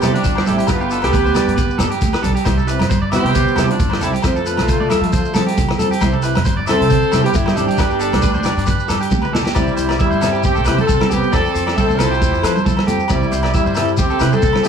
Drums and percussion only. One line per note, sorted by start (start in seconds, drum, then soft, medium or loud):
0.02 cross-stick medium
0.02 closed hi-hat soft
0.02 high conga medium
0.02 low conga medium
0.02 low agogo medium
0.02 shekere medium
0.15 closed hi-hat soft
0.24 kick medium
0.24 closed hi-hat soft
0.24 shekere medium
0.35 cross-stick medium
0.35 high conga medium
0.35 low agogo medium
0.46 closed hi-hat soft
0.46 high conga medium
0.46 shekere medium
0.58 closed hi-hat soft
0.58 shekere soft
0.67 kick medium
0.67 cross-stick medium
0.67 closed hi-hat medium
0.67 low agogo medium
0.67 shekere loud
0.80 shekere soft
0.91 closed hi-hat soft
0.91 shekere medium
1.02 cross-stick medium
1.02 closed hi-hat soft
1.02 low agogo medium
1.02 shekere soft
1.13 kick medium
1.13 closed hi-hat soft
1.13 shekere medium
1.26 shekere soft
1.34 cross-stick medium
1.34 closed hi-hat medium
1.34 high conga medium
1.34 low conga medium
1.34 low agogo medium
1.34 shekere medium
1.48 closed hi-hat soft
1.48 shekere soft
1.57 kick medium
1.57 closed hi-hat medium
1.57 low conga medium
1.57 shekere medium
1.70 shekere soft
1.79 cross-stick medium
1.79 closed hi-hat medium
1.79 high conga medium
1.79 low conga medium
1.79 low agogo medium
1.79 shekere medium
1.91 closed hi-hat soft
1.91 shekere soft
2.01 kick medium
2.01 closed hi-hat medium
2.01 shekere medium
2.13 cross-stick medium
2.13 low agogo medium
2.13 shekere soft
2.24 closed hi-hat soft
2.24 high conga medium
2.24 low conga medium
2.24 shekere medium
2.36 closed hi-hat soft
2.36 shekere soft
2.46 kick medium
2.46 cross-stick medium
2.46 closed hi-hat medium
2.46 low agogo medium
2.46 shekere medium
2.58 shekere soft
2.68 closed hi-hat soft
2.68 shekere medium
2.79 cross-stick medium
2.79 closed hi-hat soft
2.79 high conga medium
2.79 low agogo medium
2.79 shekere soft
2.90 kick medium
2.90 closed hi-hat soft
2.90 shekere medium
3.12 cross-stick medium
3.12 closed hi-hat soft
3.12 high conga medium
3.12 low conga medium
3.12 low agogo medium
3.12 shekere medium
3.26 closed hi-hat soft
3.34 kick medium
3.34 closed hi-hat soft
3.34 low conga medium
3.34 shekere medium
3.47 shekere soft
3.56 cross-stick medium
3.56 closed hi-hat soft
3.56 high conga medium
3.56 low conga medium
3.56 low agogo medium
3.56 shekere medium
3.71 closed hi-hat soft
3.79 kick medium
3.79 closed hi-hat soft
3.79 shekere medium
3.90 cross-stick medium
3.90 high conga medium
3.90 low agogo medium
4.01 closed hi-hat soft
4.01 high conga medium
4.01 low conga medium
4.01 shekere medium
4.13 closed hi-hat soft
4.13 shekere soft
4.22 kick medium
4.22 cross-stick medium
4.22 closed hi-hat soft
4.22 low agogo medium
4.22 shekere medium
4.36 shekere soft
4.46 closed hi-hat soft
4.46 shekere medium
4.57 cross-stick medium
4.57 closed hi-hat soft
4.57 high conga medium
4.57 low agogo medium
4.57 shekere soft
4.68 kick medium
4.68 closed hi-hat soft
4.68 shekere medium
4.90 cross-stick medium
4.90 closed hi-hat medium
4.90 high conga medium
4.90 low conga medium
4.90 low agogo medium
4.90 shekere medium
5.03 closed hi-hat soft
5.12 kick medium
5.12 closed hi-hat medium
5.12 low conga medium
5.12 shekere medium
5.25 shekere soft
5.34 cross-stick medium
5.34 closed hi-hat soft
5.34 high conga medium
5.34 low conga medium
5.34 low agogo medium
5.34 shekere medium
5.48 closed hi-hat soft
5.57 kick medium
5.57 closed hi-hat medium
5.57 shekere medium
5.68 cross-stick medium
5.68 high conga medium
5.68 low agogo medium
5.79 closed hi-hat medium
5.79 high conga medium
5.79 low conga medium
5.79 shekere medium
5.92 closed hi-hat medium
5.92 shekere soft
6.01 kick medium
6.01 cross-stick medium
6.01 closed hi-hat medium
6.01 low agogo medium
6.01 shekere medium
6.13 shekere soft
6.22 closed hi-hat medium
6.22 shekere medium
6.34 cross-stick medium
6.34 closed hi-hat soft
6.34 high conga medium
6.34 low agogo medium
6.34 shekere soft
6.44 kick medium
6.44 closed hi-hat medium
6.44 shekere medium
6.67 cross-stick medium
6.67 closed hi-hat soft
6.67 high conga medium
6.67 low conga medium
6.67 low agogo medium
6.67 shekere medium
6.82 closed hi-hat soft
6.90 kick medium
6.90 closed hi-hat medium
6.90 low conga medium
6.90 shekere medium
7.02 shekere soft
7.12 cross-stick medium
7.12 closed hi-hat soft
7.12 high conga medium
7.12 low conga medium
7.12 low agogo medium
7.12 shekere medium
7.26 closed hi-hat soft
7.34 kick medium
7.34 closed hi-hat soft
7.34 shekere medium
7.46 cross-stick medium
7.46 high conga medium
7.46 low agogo medium
7.57 closed hi-hat soft
7.57 high conga medium
7.57 low conga medium
7.57 shekere medium
7.68 closed hi-hat soft
7.68 shekere soft
7.77 kick loud
7.77 cross-stick medium
7.77 closed hi-hat medium
7.77 low agogo medium
7.77 shekere medium
7.90 shekere soft
8.00 closed hi-hat soft
8.00 shekere medium
8.12 cross-stick medium
8.12 closed hi-hat soft
8.12 high conga medium
8.12 low agogo medium
8.12 shekere soft
8.22 kick medium
8.22 closed hi-hat soft
8.22 shekere medium
8.34 shekere soft
8.43 cross-stick medium
8.43 closed hi-hat soft
8.43 high conga medium
8.43 low conga medium
8.43 low agogo medium
8.43 shekere medium
8.57 closed hi-hat soft
8.57 shekere soft
8.66 kick medium
8.66 closed hi-hat soft
8.66 low conga medium
8.66 shekere medium
8.79 shekere soft
8.89 cross-stick medium
8.89 closed hi-hat soft
8.89 high conga medium
8.89 low agogo medium
8.89 shekere medium
9.01 closed hi-hat soft
9.01 shekere soft
9.11 kick medium
9.11 high tom soft
9.11 shekere medium
9.22 mid tom soft
9.22 low agogo medium
9.22 shekere soft
9.35 snare medium
9.35 low conga medium
9.46 snare medium
9.46 shekere soft
9.55 kick loud
9.55 cross-stick medium
9.55 low agogo medium
9.55 shekere medium
9.67 shekere soft
9.77 closed hi-hat soft
9.77 shekere medium
9.89 cross-stick medium
9.89 low agogo medium
9.89 shekere soft
9.99 kick medium
9.99 high conga medium
9.99 shekere medium
10.12 shekere soft
10.21 cross-stick medium
10.21 closed hi-hat soft
10.21 low conga medium
10.21 low agogo medium
10.21 shekere medium
10.34 shekere soft
10.43 kick medium
10.43 shekere medium
10.56 shekere soft
10.65 cross-stick medium
10.65 closed hi-hat soft
10.65 low agogo medium
10.65 shekere medium
10.78 high conga medium
10.78 shekere soft
10.89 kick medium
10.89 shekere loud
11.00 cross-stick medium
11.00 high conga medium
11.00 low agogo medium
11.11 closed hi-hat soft
11.11 low conga medium
11.11 shekere medium
11.23 shekere soft
11.33 kick loud
11.33 cross-stick medium
11.33 low agogo medium
11.33 shekere medium
11.45 shekere soft
11.55 closed hi-hat soft
11.55 shekere medium
11.67 cross-stick medium
11.67 low agogo medium
11.67 shekere soft
11.77 kick medium
11.77 high conga medium
11.77 shekere medium
11.90 shekere soft
11.99 cross-stick medium
11.99 closed hi-hat soft
11.99 low conga medium
11.99 low agogo medium
11.99 shekere medium
12.13 shekere soft
12.22 kick loud
12.22 shekere medium
12.34 shekere soft
12.43 cross-stick medium
12.43 closed hi-hat medium
12.43 low agogo medium
12.43 shekere medium
12.56 high conga medium
12.56 shekere soft
12.66 kick medium
12.66 shekere medium
12.77 cross-stick medium
12.77 high conga medium
12.77 low agogo medium
12.88 closed hi-hat medium
12.88 low conga medium
12.88 shekere medium
13.00 shekere soft
13.08 kick loud
13.08 cross-stick medium
13.08 low agogo medium
13.08 shekere medium
13.22 shekere soft
13.32 closed hi-hat soft
13.32 shekere medium
13.43 cross-stick medium
13.43 low agogo medium
13.43 shekere soft
13.54 kick medium
13.54 high conga medium
13.54 shekere medium
13.66 shekere soft
13.75 cross-stick medium
13.75 closed hi-hat medium
13.75 low conga medium
13.75 low agogo medium
13.75 shekere medium
13.88 shekere soft
13.97 kick medium
13.97 shekere loud
14.10 shekere soft
14.20 cross-stick medium
14.20 closed hi-hat medium
14.20 low agogo medium
14.20 shekere medium
14.32 high conga medium
14.32 shekere soft
14.42 kick medium
14.42 shekere loud
14.53 cross-stick medium
14.53 high conga medium
14.53 low agogo medium
14.64 closed hi-hat soft
14.64 low conga medium
14.64 shekere medium